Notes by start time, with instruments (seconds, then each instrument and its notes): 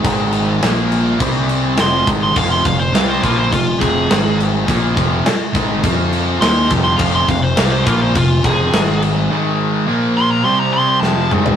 0.03 fingered electric bass G#1, overdriven electric guitar G#2 D#3 G#3, kick, crash
0.32 crash
0.61 fingered electric bass A#1, overdriven electric guitar A#2 F3 A#3, snare, crash
0.92 crash
1.19 fingered electric bass C2, overdriven electric guitar C3 G3 C4, kick, crash
1.49 crash
1.76 fingered electric bass F1, overdriven electric guitar F2 C3 F3, lead electric guitar C6, snare, crash
2.06 fingered electric bass G#1, overdriven electric guitar G#2 D#3 G#3, kick, crash
2.23 lead electric guitar C6
2.34 fingered electric bass F1, overdriven electric guitar F2 C3 F3, lead electric guitar F5, kick, crash
2.51 lead electric guitar C6
2.63 fingered electric bass F1, overdriven electric guitar F2 C3, lead electric guitar F5, kick, crash
2.79 lead electric guitar C5
2.92 fingered electric bass C2, overdriven electric guitar C3 G3 C4, lead electric guitar F5, snare, crash
3.09 lead electric guitar C5
3.22 fingered electric bass A#1, overdriven electric guitar A#2 F3 A#3, lead electric guitar F4, kick, crash
3.36 lead electric guitar C5
3.50 fingered electric bass F1, overdriven electric guitar F2 C3, lead electric guitar F4, kick, crash
3.78 fingered electric bass F1, overdriven electric guitar F2 C3 F3, lead electric guitar G#4, kick, crash
4.09 fingered electric bass G#1, overdriven electric guitar G#2 D#3 G#3, snare, crash
4.40 crash
4.65 fingered electric bass A#1, overdriven electric guitar A#2 F3 A#3, kick
4.69 crash
4.95 fingered electric bass F1, overdriven electric guitar F2 C3 F3, kick, crash
5.24 muted overdriven electric guitar stroke, muted distorted electric guitar stroke, snare, crash
5.54 fingered electric bass G#1, overdriven electric guitar G#2 D#3 G#3, kick, crash
5.82 fingered electric bass F2, overdriven electric guitar F3 C4 F4, kick, crash
6.13 crash
6.39 fingered electric bass D#2, overdriven electric guitar D#3 A#3 D#4, lead electric guitar C6, snare, crash
6.69 fingered electric bass F1, overdriven electric guitar F2 C3 F3, kick, crash
6.84 lead electric guitar C6
6.96 fingered electric bass F1, overdriven electric guitar F2 C3 F3, lead electric guitar F5, kick, crash
7.15 lead electric guitar C6
7.27 fingered electric bass F1, overdriven electric guitar F2 C3, lead electric guitar F5, kick, crash
7.42 lead electric guitar C5
7.55 fingered electric bass C2, overdriven electric guitar C3 G3 C4, lead electric guitar F5, snare, crash
7.70 lead electric guitar C5
7.83 fingered electric bass A#1, overdriven electric guitar A#2 F3 A#3, lead electric guitar F4, kick, crash
8.02 lead electric guitar C5
8.14 fingered electric bass F1, overdriven electric guitar F2 C3, lead electric guitar F4, kick, crash
8.43 fingered electric bass F1, overdriven electric guitar F2 C3 F3, lead electric guitar G#4, kick, crash
8.72 fingered electric bass G#1, overdriven electric guitar G#2 D#3 G#3, snare, crash
9.02 crash
9.30 overdriven electric guitar G#2 D#3 G#3
9.86 overdriven electric guitar A#2 F3 A#3
10.17 lead electric guitar C6
10.31 lead electric guitar A#5
10.44 overdriven electric guitar C3 G3 C4, lead electric guitar C6
10.59 lead electric guitar A#5
10.74 lead electric guitar C6
10.89 lead electric guitar C6
11.00 overdriven electric guitar F2 C3, lead electric guitar A5, snare
11.04 overdriven electric guitar F3
11.31 overdriven electric guitar G#2 D#3 G#3, mid tom
11.46 floor tom